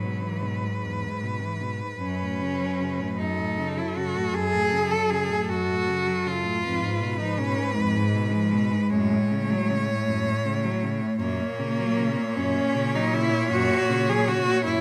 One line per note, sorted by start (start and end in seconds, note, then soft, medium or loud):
0.00 2.01 G#2 medium
0.00 0.25 B2 soft
0.00 1.62 F#3 medium
0.00 3.21 B4 medium
0.23 0.45 E3 medium
0.43 0.65 B2 medium
0.64 0.86 G#2 medium
0.84 1.05 E2 medium
1.04 1.25 G#2 medium
1.23 1.44 B2 medium
1.43 1.63 E3 medium
1.62 1.84 B2 medium
1.82 2.01 G#2 medium
2.01 6.65 F#2 medium
2.01 2.23 F#2 medium
2.01 3.15 C#4 loud
2.22 2.43 A2 medium
2.41 2.62 C#3 medium
2.60 2.82 F#3 medium
2.80 3.01 C#3 medium
3.00 3.21 A2 medium
3.19 3.40 F#2 medium
3.19 3.79 D#4 medium
3.19 6.63 A4 medium
3.38 3.59 A2 medium
3.58 3.78 C#3 medium
3.77 3.98 F#3 medium
3.77 3.97 E4 medium
3.96 4.17 C#3 medium
3.96 4.35 F#4 medium
4.16 4.33 A2 medium
4.34 4.55 F#2 medium
4.34 4.93 G#4 loud
4.53 4.74 A2 medium
4.72 4.93 C#3 medium
4.91 5.12 F#3 medium
4.91 5.11 A4 loud
5.10 5.31 C#3 medium
5.10 5.50 G#4 loud
5.30 5.51 A2 medium
5.49 5.70 F#2 medium
5.49 6.28 F#4 loud
5.69 5.90 A2 medium
5.88 6.08 C#3 medium
6.06 6.27 F#3 medium
6.26 6.45 C#3 medium
6.26 7.19 F4 loud
6.44 6.63 A2 medium
6.63 6.84 F2 medium
6.63 8.91 G#2 medium
6.63 8.92 B4 medium
6.83 7.02 G#2 medium
7.01 7.21 B2 medium
7.20 7.40 F3 medium
7.20 7.40 D#4 medium
7.38 7.59 B2 medium
7.38 7.76 C#4 loud
7.57 7.77 G#2 medium
7.75 7.97 F2 medium
7.75 10.82 G#3 loud
7.96 8.16 G#2 medium
8.15 8.35 B2 medium
8.33 8.55 F3 medium
8.53 8.74 B2 medium
8.72 8.91 G#2 medium
8.91 9.13 F#2 medium
8.91 11.21 A2 medium
8.91 11.18 C#5 medium
9.12 9.32 A2 medium
9.31 9.51 C#3 medium
9.50 9.71 F#3 medium
9.70 9.90 C#3 medium
9.88 10.10 A2 medium
10.08 10.28 F#2 medium
10.26 10.47 A2 medium
10.45 10.65 C#3 medium
10.64 10.84 F#3 medium
10.82 11.03 C#3 medium
11.01 11.19 A2 medium
11.19 11.40 F#2 medium
11.19 14.81 A#2 medium
11.19 12.38 A#3 loud
11.19 14.81 C#5 medium
11.39 11.60 A#2 medium
11.59 11.80 C#3 medium
11.78 12.00 F#3 medium
11.98 12.19 C#3 medium
12.17 12.39 A#2 medium
12.36 12.57 F#2 medium
12.36 12.96 C#4 loud
12.56 12.76 A#2 medium
12.75 12.96 C#3 medium
12.94 13.15 F#3 medium
12.94 13.15 D#4 loud
13.13 13.33 C#3 medium
13.13 13.52 E4 loud
13.32 13.51 A#2 medium
13.50 13.72 F#2 medium
13.50 14.11 F#4 loud
13.70 13.91 A#2 medium
13.90 14.10 C#3 medium
14.09 14.29 F#3 medium
14.09 14.29 G#4 loud
14.28 14.48 C#3 medium
14.28 14.65 F#4 loud
14.47 14.67 A#2 medium
14.66 14.81 F#2 medium
14.66 14.81 E4 loud